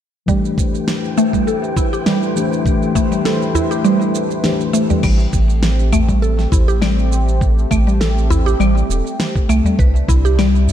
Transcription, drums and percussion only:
0.28 kick loud
0.28 shaker soft
0.45 shaker soft
0.58 kick medium
0.58 shaker medium
0.75 shaker soft
0.88 snare medium
0.88 shaker soft
1.05 shaker soft
1.18 shaker medium
1.33 kick soft
1.33 shaker soft
1.48 shaker soft
1.64 shaker soft
1.77 kick loud
1.77 shaker medium
1.93 shaker soft
2.06 snare medium
2.06 shaker soft
2.23 shaker soft
2.37 shaker medium
2.53 shaker soft
2.66 kick loud
2.66 shaker soft
2.83 shaker soft
2.95 kick medium
2.95 shaker medium
3.12 shaker soft
3.25 snare medium
3.25 shaker soft
3.42 shaker soft
3.55 udu medium
3.55 shaker medium
3.72 shaker soft
3.85 shaker soft
4.01 shaker soft
4.15 shaker medium
4.31 shaker soft
4.44 snare medium
4.44 shaker soft
4.61 shaker soft
4.74 shaker medium
4.90 udu medium
4.90 shaker soft
5.03 kick loud
5.03 crash medium
5.03 claves medium
5.03 shaker soft
5.20 shaker soft
5.33 kick medium
5.33 shaker medium
5.50 shaker soft
5.63 snare loud
5.63 shaker soft
5.79 shaker soft
5.92 udu medium
5.92 claves medium
5.92 shaker medium
6.09 kick medium
6.09 shaker soft
6.23 shaker soft
6.39 snare soft
6.39 shaker soft
6.51 kick medium
6.51 udu medium
6.51 shaker medium
6.69 shaker soft
6.82 snare medium
6.82 claves medium
6.82 shaker soft
6.99 shaker soft
7.12 shaker medium
7.29 shaker soft
7.41 kick loud
7.41 shaker soft
7.58 shaker soft
7.71 kick loud
7.71 claves medium
7.71 shaker medium
7.88 shaker soft
8.01 snare loud
8.01 shaker soft
8.18 shaker soft
8.30 udu medium
8.30 shaker medium
8.48 shaker soft
8.60 claves medium
8.60 shaker soft
8.77 shaker soft
8.91 shaker medium
9.07 shaker soft
9.20 snare medium
9.20 shaker soft
9.36 kick loud
9.36 shaker soft
9.49 claves medium
9.49 shaker medium
9.64 udu medium
9.64 shaker soft
9.79 kick loud
9.79 shaker soft
9.96 shaker soft
10.08 kick medium
10.08 shaker medium
10.26 shaker soft
10.39 snare loud
10.39 claves medium
10.39 shaker soft
10.55 shaker soft
10.68 udu medium
10.68 shaker medium

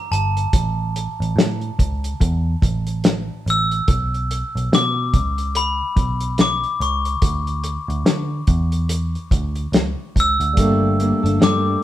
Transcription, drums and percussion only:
0.13 closed hi-hat medium
0.37 closed hi-hat soft
0.53 kick loud
0.53 closed hi-hat loud
0.96 closed hi-hat medium
1.22 closed hi-hat soft
1.38 snare loud
1.38 closed hi-hat medium
1.61 closed hi-hat soft
1.79 kick medium
1.79 closed hi-hat medium
2.04 closed hi-hat medium
2.21 kick medium
2.21 closed hi-hat medium
2.62 kick medium
2.62 closed hi-hat medium
2.87 closed hi-hat soft
3.04 snare loud
3.04 closed hi-hat medium
3.48 closed hi-hat medium
3.71 closed hi-hat soft
3.88 kick loud
3.88 closed hi-hat medium
4.14 closed hi-hat soft
4.31 closed hi-hat medium
4.57 closed hi-hat soft
4.73 snare loud
4.73 closed hi-hat medium
5.14 kick medium
5.14 closed hi-hat medium
5.38 closed hi-hat medium
5.55 closed hi-hat loud
5.97 kick medium
5.97 closed hi-hat medium
6.21 closed hi-hat soft
6.38 snare medium
6.38 closed hi-hat medium
6.64 closed hi-hat soft
6.81 closed hi-hat medium
7.05 closed hi-hat medium
7.22 kick loud
7.22 closed hi-hat loud
7.47 closed hi-hat soft
7.64 closed hi-hat medium
7.90 closed hi-hat soft
8.06 snare loud
8.06 closed hi-hat medium
8.47 kick medium
8.47 closed hi-hat medium
8.72 closed hi-hat medium
8.89 closed hi-hat loud
9.15 closed hi-hat soft
9.31 kick medium
9.31 closed hi-hat medium
9.55 closed hi-hat soft
9.73 snare loud
9.73 closed hi-hat medium
10.16 kick medium
10.16 closed hi-hat medium
10.41 closed hi-hat soft
10.57 kick medium
10.57 closed hi-hat loud
11.00 closed hi-hat medium
11.26 closed hi-hat soft
11.42 snare loud
11.42 closed hi-hat medium

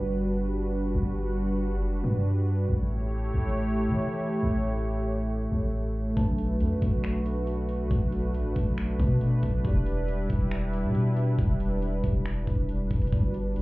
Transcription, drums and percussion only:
6.17 kick loud
6.17 closed hi-hat medium
6.38 closed hi-hat medium
6.60 closed hi-hat medium
6.82 kick medium
6.82 closed hi-hat medium
7.04 finger snap loud
7.04 closed hi-hat medium
7.26 closed hi-hat medium
7.47 closed hi-hat medium
7.69 closed hi-hat medium
7.91 kick loud
7.91 closed hi-hat medium
8.12 closed hi-hat medium
8.34 closed hi-hat medium
8.56 kick medium
8.56 closed hi-hat medium
8.78 finger snap loud
8.78 closed hi-hat medium
9.00 kick medium
9.00 closed hi-hat medium
9.21 closed hi-hat medium
9.43 kick loud
9.43 closed hi-hat medium
9.65 kick loud
9.65 closed hi-hat medium
9.86 closed hi-hat medium
10.08 closed hi-hat medium
10.30 kick medium
10.30 closed hi-hat medium
10.51 finger snap loud
10.51 closed hi-hat medium
10.73 closed hi-hat medium
10.95 closed hi-hat medium
11.17 closed hi-hat medium
11.39 kick loud
11.39 closed hi-hat medium
11.60 closed hi-hat medium
11.82 closed hi-hat medium
12.04 kick medium
12.04 closed hi-hat medium
12.26 finger snap loud
12.26 closed hi-hat medium
12.47 kick medium
12.47 closed hi-hat medium
12.69 closed hi-hat medium
12.91 kick loud
12.91 closed hi-hat soft
12.96 closed hi-hat medium
13.02 closed hi-hat medium
13.07 closed hi-hat medium
13.12 kick loud
13.12 closed hi-hat medium
13.34 closed hi-hat medium
13.56 closed hi-hat medium

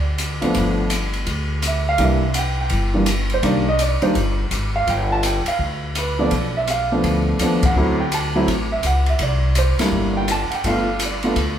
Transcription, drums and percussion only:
0.18 hi-hat pedal soft
0.18 ride medium
0.42 ride soft
0.54 kick soft
0.54 ride medium
0.90 hi-hat pedal medium
0.90 ride medium
1.13 ride soft
1.26 kick soft
1.26 ride medium
1.62 hi-hat pedal medium
1.62 ride medium
1.98 kick soft
1.98 ride medium
2.34 hi-hat pedal medium
2.34 ride medium
2.69 kick soft
2.69 ride medium
3.06 hi-hat pedal medium
3.06 ride medium
3.30 ride soft
3.43 kick soft
3.43 ride medium
3.79 hi-hat pedal medium
3.79 ride medium
4.02 ride soft
4.15 kick soft
4.15 ride medium
4.51 hi-hat pedal medium
4.51 ride medium
4.87 kick soft
4.87 ride medium
5.23 hi-hat pedal medium
5.23 ride medium
5.46 ride medium
5.59 kick soft
5.95 hi-hat pedal soft
5.95 ride medium
6.31 kick soft
6.31 ride medium
6.67 hi-hat pedal medium
6.67 ride medium
7.04 kick soft
7.04 ride medium
7.39 hi-hat pedal medium
7.39 ride medium
7.63 kick medium
7.63 ride medium
8.12 hi-hat pedal soft
8.12 ride medium
8.48 kick soft
8.48 ride medium
8.83 hi-hat pedal soft
8.83 ride medium
9.06 ride soft
9.19 kick soft
9.19 ride medium
9.55 hi-hat pedal medium
9.55 ride medium
9.79 snare soft
9.79 ride medium
9.92 kick soft
10.28 hi-hat pedal soft
10.28 ride medium
10.51 ride soft
10.64 kick soft
10.64 ride medium
10.99 hi-hat pedal medium
10.99 ride medium
11.23 ride soft
11.36 kick soft
11.36 ride medium

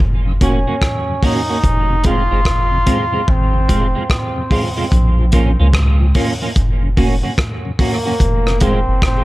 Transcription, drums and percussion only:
0.00 kick loud
0.41 kick medium
0.41 closed hi-hat medium
0.82 kick loud
0.82 cross-stick loud
1.23 kick loud
1.23 open hi-hat medium
1.63 kick loud
1.63 hi-hat pedal medium
2.04 kick medium
2.04 closed hi-hat medium
2.45 kick loud
2.45 cross-stick loud
2.87 kick medium
2.87 closed hi-hat medium
3.28 kick loud
3.69 kick medium
3.69 closed hi-hat medium
4.10 kick loud
4.10 cross-stick loud
4.51 kick loud
4.51 open hi-hat medium
4.92 kick loud
4.92 hi-hat pedal medium
5.32 kick medium
5.32 closed hi-hat medium
5.73 kick loud
5.73 cross-stick loud
6.15 kick medium
6.15 open hi-hat medium
6.55 kick loud
6.55 hi-hat pedal medium
6.97 kick medium
6.97 open hi-hat soft
7.38 kick loud
7.38 cross-stick loud
7.38 hi-hat pedal medium
7.79 kick loud
7.79 open hi-hat medium
8.20 kick loud
8.20 hi-hat pedal medium
8.47 cross-stick medium
8.60 kick medium
8.60 closed hi-hat medium
9.02 kick loud
9.02 cross-stick loud

